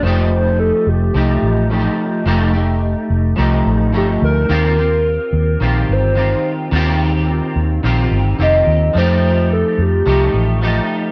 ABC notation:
X:1
M:4/4
L:1/16
Q:"Swing 16ths" 1/4=108
K:Fmix
V:1 name="Soft synth lead"
c4 A2 G8 z2 | z12 G2 B2- | B8 B2 c4 z2 | z12 e4 |
c4 A2 G8 z2 |]
V:2 name="Clean electric guitar"
[F,A,EG]8 [F,A,EG]4 [F,A,EG]4 | [F,A,EG]2 [A,EG]6 [F,A,EG]4 [F,A,EG]4 | [E,CFG]2 [CFG]6 [E,CFG]4 [E,CFG]4 | [E,CFG]8 [E,CFG]4 [E,CFG]4 |
[F,A,EG]8 [F,A,EG]4 [F,A,EG]4 |]
V:3 name="Fingered electric bass" clef=bass
F,,,4- F,,, z F,,,2 C,,2 A,,,4 z2 | F,,,4- F,,, z F,,,2 C,,2 A,,,2 G,,,2 D,,2 | E,,4- E,, z E,,2 B,,,2 G,,,4 z2 | E,,4- E,, z E,,2 B,,,2 G,,,2 F,,,2 E,,2 |
F,,4- F,, z F,,2 C,,2 A,,,4 z2 |]